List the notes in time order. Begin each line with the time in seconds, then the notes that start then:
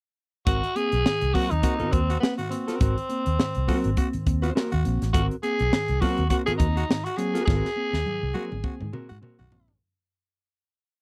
0.46 G#1 G#2 D#3 C4 F#4 A#4, kick, closed hi-hat
0.64 closed hi-hat
0.76 A#3 C4 G#4, closed hi-hat
0.92 B1, closed hi-hat
1.05 G#2 D#3, snare
1.21 C2, closed hi-hat
1.34 F#3 A#3 C4 F#4 A#4, kick, open hi-hat
1.50 D#2 A#3 C4 D#4, closed hi-hat
1.63 A#3 C4 F#4 A#4, kick, closed hi-hat
1.79 G#2 D#3 C4 F#4 A#4, muted fingered electric bass stroke, closed hi-hat
1.92 D#2 A#3 C4, kick, closed hi-hat
2.10 F#4, closed hi-hat
2.20 A#3 B3 C4, snare
2.38 G#2 D#3 F#4, closed hi-hat
2.50 A#3 C4, closed hi-hat
2.68 C4 F#4 A#4, snare, closed hi-hat
2.80 G#1 G#2 D#3 C4 F#4 A#4, kick, closed hi-hat
2.98 closed hi-hat
3.09 A#3 C4, closed hi-hat
3.26 D#2, closed hi-hat
3.39 G#2 D#3, snare
3.55 C2, closed hi-hat
3.68 F#3 A#3 C4 F#4 A#4, kick, open hi-hat
3.84 G#1 A#3 C4, closed hi-hat
3.97 A#3 C4 F#4, kick, closed hi-hat
4.13 G#2 D#3, muted fingered electric bass stroke, closed hi-hat
4.26 D#2 A#3 C4, kick, closed hi-hat
4.42 C4 F#4 C5, closed hi-hat
4.55 A#3 C4 F#4 A#4, snare
4.71 D#2 G#2 D#3 F#4, closed hi-hat
4.85 A#1 A#3 C4, closed hi-hat
5.02 A1, snare, closed hi-hat
5.13 G#1 G#2 D#3 C4 F#4 A#4, kick, closed hi-hat
5.31 closed hi-hat
5.43 A#3 C4 G#4, closed hi-hat
5.59 B1, closed hi-hat
5.72 G#2 D#3, snare
5.88 C2, closed hi-hat
6.01 F#3 A#3 C4 F#4 A#4, kick, open hi-hat
6.18 D#2 A#3 C4, closed hi-hat
6.30 A#3 C4 F#4 A#4, kick, closed hi-hat
6.46 G#2 D#3 C4 F#4 G#4 A#4, muted fingered electric bass stroke, closed hi-hat
6.58 D#2 A#3 C4 D#4, kick, closed hi-hat
6.77 F#4, closed hi-hat
6.89 G#2 D#3, snare
7.04 F#4, closed hi-hat
7.17 F#3 A#3 C4 G#4, closed hi-hat
7.34 A#3 C4 F#4 A#4, snare, closed hi-hat
7.45 G#1 G#2 D#3 C4 F#4 G#4 A#4, kick, snare
7.65 snare
7.76 A#3 C4
7.93 D#2, snare
8.05 G#2 D#3, high tom
8.23 C2
8.34 F#3 A#3 C4 F#4 A#4, high tom
8.51 G#1 A#3 C4, mid tom
8.64 A#3 C4 F#4, kick
8.81 G#2 D#3, mid tom
8.93 A#3 C4 F#4 A#4, mid tom
9.09 G#2 F#4
9.22 A#3 C4 F#4 A#4, mid tom
9.39 B1 G#2 D#3 F#4, floor tom
9.52 A#1 A#3 C4, floor tom
9.68 A1, floor tom